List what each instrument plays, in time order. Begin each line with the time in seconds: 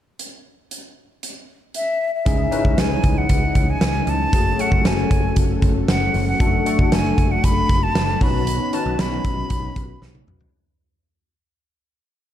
0.19 closed hi-hat
0.71 closed hi-hat
1.23 closed hi-hat
1.74 flute E5, closed hi-hat
2.14 flute E5
2.25 picked electric bass C#2, analog synth pad C#3 E3 C#4 D#5, tine electric piano C#4 D#4 E4 G#4, kick, closed hi-hat
2.52 tine electric piano C#4 D#4 E4 B4, closed hi-hat
2.65 picked electric bass C#2, kick
2.78 picked electric bass C#2, flute G#5, snare, closed hi-hat
3.04 picked electric bass C#2, kick, closed hi-hat
3.18 flute F#5
3.29 picked electric bass C#2, kick, closed hi-hat
3.55 picked electric bass C#2, kick, closed hi-hat
3.70 flute G#5
3.81 picked electric bass C#2, snare, closed hi-hat
4.07 picked electric bass C#2, flute A5, closed hi-hat
4.33 picked electric bass F#1, analog synth pad F#3 C#4 A4 G#5, tine electric piano A3 C#4 F#4 G#4, kick, closed hi-hat
4.59 tine electric piano A3 C#4 F#4 A4, flute F#5, closed hi-hat
4.72 picked electric bass F#1, kick
4.84 picked electric bass F#1, flute G#5, snare, closed hi-hat
5.11 picked electric bass F#1, kick, closed hi-hat
5.36 picked electric bass F#1, kick, closed hi-hat
5.62 picked electric bass F#1, kick, closed hi-hat
5.88 picked electric bass F#1, flute F#5, snare, closed hi-hat
6.14 picked electric bass F#1, open hi-hat
6.28 flute F#5
6.39 picked electric bass F#1, tine electric piano A3 D4 F#4 A4, analog synth pad A3 D4, kick, closed hi-hat
6.65 tine electric piano A3 D4 F#4 A4, closed hi-hat
6.79 picked electric bass F#1, kick
6.92 picked electric bass F#1, flute G#5, snare, closed hi-hat
7.18 picked electric bass F#1, kick, closed hi-hat
7.31 flute F#5
7.44 picked electric bass F#1, flute B5, kick, closed hi-hat
7.69 picked electric bass F#1, kick, closed hi-hat
7.83 flute A5
7.95 picked electric bass F#1, snare, closed hi-hat
8.20 picked electric bass B1, analog synth pad D#3 B3 C#4, tine electric piano C#4 D#4 F#4 B4, flute B5, kick, open hi-hat
8.47 closed hi-hat
8.73 tine electric piano C#4 D#4 F#4 B4, flute A5, closed hi-hat
8.86 picked electric bass B1
8.98 picked electric bass B1, flute B5, snare, closed hi-hat
9.24 picked electric bass B1, kick, closed hi-hat
9.50 picked electric bass B1, kick, closed hi-hat
9.76 picked electric bass B1, kick, closed hi-hat
10.02 picked electric bass B1, snare
10.15 high tom
10.27 picked electric bass B1, mid tom
10.41 floor tom